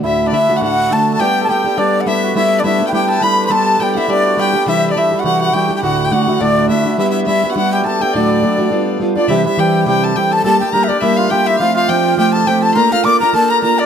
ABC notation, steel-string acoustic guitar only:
X:1
M:4/4
L:1/8
Q:"Swing" 1/4=208
K:D
V:1 name="Steel-string acoustic guitar"
[D,,A,,D,A,DF]2 [D,A,DF] [D,A,DF] [D,,A,,D,A,DF]2 [D,A,DF]2 | [G,B,DG]2 [G,B,DG] [B,DG] [G,B,DG]2 [G,B,DG]2 | [G,B,DE]2 [G,B,DE] [B,DE] [G,B,DE]2 [G,B,DE]2 | [G,B,DG]2 [G,B,DG] [B,DG] [G,B,DG]2 [G,B,DG] [B,DG] |
[=C,E,G,DG]2 [E,G,DG] [G,DG] [C,E,G,DG]2 [E,G,DG] [G,DG] | [D,,A,,D,A,DF]2 [D,A,DF] [D,A,DF] [D,,A,,D,A,DF]2 [D,A,DF] [D,A,DF] | [G,B,DG]2 [G,B,DG] [B,DG] [G,B,DG]2 [G,B,DG] [B,DG] | [D,,A,,F,A,DF]2 [F,A,DF] [F,A,DF] [G,B,D=F]2 [G,B,DF] [B,DF] |
[K:Cmix] [C,E,G,CG] [G,CG] [E,G,CG]2 [C,E,G,CG]2 [E,G,CG]2 | [G,B,DG] [B,DG] [G,B,DG] [B,DG] [G,B,DG]2 [G,B,DG]2 | [F,A,CF]2 [F,A,CF]2 [F,A,CF]2 [F,A,CF]2 | [B,DFB] [DFB] [B,DFB] [DFB] [B,DFB]2 [B,DFB]2 |]